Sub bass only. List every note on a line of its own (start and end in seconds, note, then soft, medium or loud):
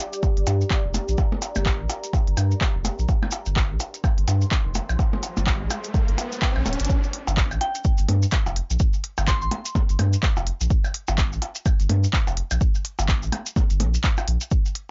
0.37 0.43 G1 medium
0.47 0.64 G2 medium
0.85 0.99 F1 loud
1.08 1.15 A#1 medium
1.56 1.82 G1 loud
1.80 1.86 A#1 medium
2.27 2.34 G1 loud
2.37 2.54 G2 medium
2.75 2.89 F1 loud
2.99 3.05 A#1 medium
3.46 3.72 G1 loud
3.70 3.77 A#1 medium
4.18 4.24 G1 loud
4.28 4.45 G2 medium
4.66 4.79 F1 loud
4.89 4.96 A#1 medium
5.37 5.62 G1 loud
5.61 5.67 A#1 medium
6.08 6.15 G1 loud
6.56 6.62 A#1 medium
6.66 6.75 D1 medium
6.80 6.86 G1 medium
7.27 7.53 G1 loud
7.51 7.58 A#1 medium
7.99 8.05 G1 loud
8.09 8.26 G2 medium
8.47 8.60 F1 loud
8.70 8.77 A#1 medium
9.18 9.43 G1 loud
9.42 9.48 A#1 medium
9.89 9.96 G1 loud
9.99 10.16 G2 medium
10.37 10.51 F1 loud
10.61 10.67 A#1 medium
11.09 11.34 G1 loud
11.32 11.39 A#1 medium
11.80 11.86 G1 loud
11.90 12.06 G2 medium
12.27 12.41 F1 loud
12.51 12.58 A#1 medium
12.99 13.24 G1 loud
13.23 13.29 A#1 loud
13.70 13.82 G1 loud
13.80 13.97 A#1 medium
14.28 14.37 A#1 medium